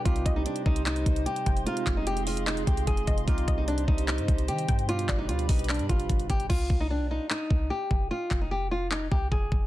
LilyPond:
<<
  \new Staff \with { instrumentName = "Synth pluck" } { \time 4/4 \key c \minor \tempo 4 = 149 r8 ees''8 r2 r8 g''8 | r8 f''8 r2 r8 ees''8 | r8 ees''8 r2 r8 g''8 | r8 d''8 r2. |
r1 | r1 | }
  \new Staff \with { instrumentName = "Ambient pad" } { \time 4/4 \key c \minor << { c'''1~ | c'''1~ | c'''1 | b''1 |
r1 | r1 | } \\ { <g' c'' ees''>1 | <aes' f''>1 | <g' c''>1 | <g' b' d''>1 |
r1 | r1 | } >> }
  \new Staff \with { instrumentName = "Nylon-string guitar" } { \time 4/4 \key c \minor f'8. ees'16 d'8 ees'8 ees'4 g'4 | f'8. ees'16 g'8 f'8 ees'8 g'8 aes'4 | f'8. ees'16 d'8 ees'8 ees'4 g'4 | f'8. ees'16 f'8 ees'8 d'8 f'4 g'8 |
f'8. ees'16 d'8 ees'8 ees'4 g'4 | f'8. ees'16 g'8 f'8 ees'8 g'8 aes'4 | }
  \new Staff \with { instrumentName = "Tine electric piano" } { \time 4/4 \key c \minor <c g ees' g'>1 | <c aes ees' f'>1 | <c g ees' g'>1 | <b, g d' g'>1 |
r1 | r1 | }
  \new Staff \with { instrumentName = "808-style bass" } { \clef bass \time 4/4 \key c \minor c,8 c,8 r8 c,4 c,8 r8 f,,8 | r8 f,,2 c,8 f,,8 f,,8 | c,8 c,4 c,8. g,16 c,8 ees8 g,8~ | g,8 g,,8 d,8 b,,8. g,16 g,,8 g,,8 g,,8 |
c,8 c,8. b,,8 r8. c,8 r8 f,,8 | r8 f,,2 c,8 f,,8 f,,8 | }
  \new DrumStaff \with { instrumentName = "Drums" } \drummode { \time 4/4 <hh bd>16 hh16 <hh bd>8 hh16 hh16 bd16 hh16 <hc hh>16 hh16 <hh bd>16 hh16 hh16 hh16 <hh bd>16 hh16 | hh16 hh16 <hc hh bd>8 hh16 hh16 hho16 hh16 <hc hh>16 hh16 <hh bd>16 hh16 <hh bd>16 hh16 <hh bd>16 hh16 | <hh bd>16 hh16 <hh bd>8 hh16 hh16 bd16 hh16 <hc hh>16 hh16 <hh bd>16 hh16 hh16 hh16 <hh bd>16 hh16 | hh16 hh16 <hc hh bd>8 hh16 hh16 <hho bd>16 hh32 hh32 <hc hh>32 hh32 hh16 <hh bd>16 hh16 <hh bd>16 hh16 <hh bd>16 hh16 |
<cymc bd>8 bd8 r4 hc8 bd8 r8 bd8 | r8 <hc bd>8 r4 hc8 bd8 bd8 bd8 | }
>>